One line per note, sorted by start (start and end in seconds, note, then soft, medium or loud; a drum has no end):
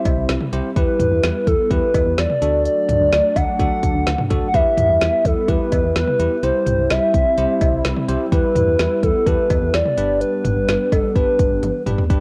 0.00 2.37 G3 medium
0.00 0.74 C4 medium
0.00 0.32 E4 medium
0.00 2.38 E4 medium
0.00 0.32 G4 medium
0.00 0.32 C5 medium
0.00 0.25 E5 loud
0.05 0.14 C2 loud
0.05 kick loud
0.05 closed hi-hat medium
0.05 cowbell medium
0.17 0.26 C2 loud
0.29 0.38 C2 loud
0.29 snare loud
0.29 closed hi-hat medium
0.41 mid tom medium
0.53 0.61 C2 loud
0.53 0.69 E4 medium
0.53 0.69 G4 medium
0.53 0.69 C5 medium
0.53 closed hi-hat medium
0.76 0.85 E2 loud
0.76 2.40 B3 medium
0.76 1.43 E4 medium
0.76 1.43 G4 medium
0.76 1.48 B4 loud
0.76 1.43 B4 medium
0.76 kick loud
0.76 closed hi-hat medium
1.00 1.08 E2 loud
1.00 closed hi-hat medium
1.00 mid tom loud
1.12 1.20 E2 loud
1.23 1.32 E2 loud
1.23 snare loud
1.23 closed hi-hat medium
1.47 1.56 E2 loud
1.47 1.72 A4 medium
1.47 kick medium
1.47 closed hi-hat medium
1.71 1.79 E2 loud
1.71 2.21 E4 medium
1.71 2.21 G4 medium
1.71 2.20 B4 loud
1.71 2.21 B4 medium
1.71 kick medium
1.71 closed hi-hat medium
1.94 2.03 E2 medium
1.94 kick medium
1.94 closed hi-hat medium
1.94 cowbell medium
2.06 2.15 E2 loud
2.18 2.27 E2 loud
2.18 2.65 D5 loud
2.18 snare loud
2.18 closed hi-hat medium
2.30 mid tom medium
2.42 2.67 D2 loud
2.42 4.52 F#3 medium
2.42 4.52 A3 medium
2.42 3.17 D4 medium
2.42 4.52 D4 loud
2.42 3.17 F#4 medium
2.42 3.17 A4 medium
2.42 closed hi-hat medium
2.65 3.37 D5 loud
2.65 closed hi-hat medium
2.89 2.97 D2 loud
2.89 closed hi-hat medium
2.89 mid tom loud
3.01 3.09 D2 loud
3.12 3.21 D2 loud
3.12 snare loud
3.12 closed hi-hat medium
3.36 3.45 D2 loud
3.36 3.59 F#5 loud
3.36 kick medium
3.36 closed hi-hat medium
3.36 cowbell medium
3.60 3.68 D2 loud
3.60 4.10 D4 medium
3.60 4.10 F#4 medium
3.60 4.10 A4 medium
3.60 4.27 F#5 loud
3.60 kick loud
3.60 closed hi-hat medium
3.83 3.92 D2 loud
3.83 kick loud
3.83 closed hi-hat medium
3.95 4.04 D2 loud
4.07 4.16 D2 loud
4.07 snare loud
4.07 closed hi-hat medium
4.18 mid tom medium
4.31 4.39 D2 loud
4.31 4.47 D4 medium
4.31 4.47 F#4 medium
4.31 4.47 A4 medium
4.31 kick medium
4.31 closed hi-hat medium
4.47 4.56 F#5 medium
4.54 4.63 E2 medium
4.54 9.93 G3 medium
4.54 6.41 B3 medium
4.54 5.21 E4 medium
4.54 6.41 E4 medium
4.54 5.21 G4 medium
4.54 5.21 B4 medium
4.54 5.27 E5 loud
4.54 kick loud
4.54 closed hi-hat medium
4.78 4.86 E2 loud
4.78 closed hi-hat medium
4.78 mid tom loud
4.90 4.98 E2 medium
5.01 5.10 E2 loud
5.01 snare loud
5.01 closed hi-hat medium
5.25 5.34 E2 loud
5.25 5.50 A4 loud
5.25 kick medium
5.25 closed hi-hat medium
5.48 5.57 E2 loud
5.48 5.99 E4 medium
5.48 5.99 G4 medium
5.48 5.99 B4 medium
5.48 5.96 B4 loud
5.48 kick loud
5.48 closed hi-hat medium
5.72 5.81 E2 loud
5.72 kick loud
5.72 closed hi-hat medium
5.72 cowbell medium
5.84 5.93 E2 loud
5.96 6.04 E2 loud
5.96 6.45 B4 loud
5.96 snare loud
5.96 closed hi-hat medium
6.07 mid tom medium
6.19 6.28 E2 loud
6.19 6.36 E4 medium
6.19 6.36 G4 medium
6.19 6.36 B4 medium
6.19 closed hi-hat medium
6.43 6.52 C2 loud
6.43 8.30 C4 medium
6.43 9.94 E4 loud
6.43 7.10 E4 medium
6.43 7.10 G4 medium
6.43 6.92 C5 loud
6.43 7.10 C5 medium
6.43 closed hi-hat medium
6.66 6.75 C2 medium
6.66 closed hi-hat medium
6.66 mid tom loud
6.79 6.87 C2 loud
6.90 6.99 C2 loud
6.90 7.85 E5 loud
6.90 snare loud
6.90 closed hi-hat medium
7.14 7.23 C2 loud
7.14 kick medium
7.14 closed hi-hat medium
7.38 7.46 C2 loud
7.38 7.88 E4 medium
7.38 7.88 G4 medium
7.38 7.88 C5 medium
7.38 closed hi-hat medium
7.61 7.70 C2 loud
7.61 kick loud
7.61 closed hi-hat medium
7.61 cowbell medium
7.73 7.82 C2 loud
7.85 7.94 C2 loud
7.85 snare loud
7.85 closed hi-hat medium
7.97 mid tom medium
8.09 8.17 C2 loud
8.09 8.25 E4 medium
8.09 8.25 G4 medium
8.09 8.25 C5 medium
8.09 closed hi-hat medium
8.32 8.41 E2 loud
8.32 9.96 B3 medium
8.32 8.99 E4 medium
8.32 8.99 G4 medium
8.32 8.99 B4 medium
8.32 9.04 B4 loud
8.32 kick loud
8.32 closed hi-hat medium
8.55 8.64 E2 loud
8.55 closed hi-hat medium
8.55 mid tom loud
8.68 8.76 E2 loud
8.79 8.88 E2 loud
8.79 snare loud
8.79 closed hi-hat medium
9.03 9.12 E2 loud
9.03 9.28 A4 medium
9.03 kick medium
9.03 closed hi-hat medium
9.26 9.35 E2 loud
9.26 9.77 E4 medium
9.26 9.77 G4 medium
9.26 9.77 A4 medium
9.26 9.75 B4 loud
9.26 kick loud
9.26 closed hi-hat medium
9.50 9.59 E2 loud
9.50 kick loud
9.50 closed hi-hat medium
9.50 cowbell medium
9.62 9.71 E2 loud
9.74 9.82 E2 loud
9.74 10.20 D5 loud
9.74 snare loud
9.74 closed hi-hat medium
9.86 mid tom medium
9.97 10.23 G1 loud
9.97 12.08 G3 medium
9.97 12.08 B3 medium
9.97 12.08 D4 medium
9.97 10.73 D4 medium
9.97 10.73 G4 medium
9.97 10.73 B4 medium
9.97 closed hi-hat medium
10.21 10.94 B4 loud
10.21 closed hi-hat medium
10.45 10.53 G1 loud
10.45 closed hi-hat medium
10.45 mid tom loud
10.56 10.65 G1 loud
10.68 10.77 G1 loud
10.68 snare loud
10.68 closed hi-hat medium
10.92 11.01 G1 loud
10.92 11.15 A4 medium
10.92 kick medium
10.92 closed hi-hat medium
10.92 cowbell medium
11.15 11.24 G1 loud
11.15 11.66 D4 medium
11.15 11.66 G4 medium
11.15 11.66 B4 medium
11.15 11.82 B4 medium
11.15 kick loud
11.15 closed hi-hat medium
11.39 11.48 G1 loud
11.39 kick loud
11.39 closed hi-hat medium
11.51 11.60 G1 medium
11.63 11.71 G1 loud
11.63 closed hi-hat medium
11.63 high tom medium
11.86 11.95 G1 loud
11.86 12.03 D4 medium
11.86 12.03 G4 medium
11.86 12.03 B4 medium
11.86 closed hi-hat medium
11.86 mid tom medium
11.98 floor tom loud
12.10 12.19 G1 loud
12.10 12.20 G3 medium
12.10 12.20 B3 medium
12.10 12.20 D4 medium
12.10 12.20 G4 medium
12.10 12.20 B4 medium
12.10 kick loud
12.10 closed hi-hat medium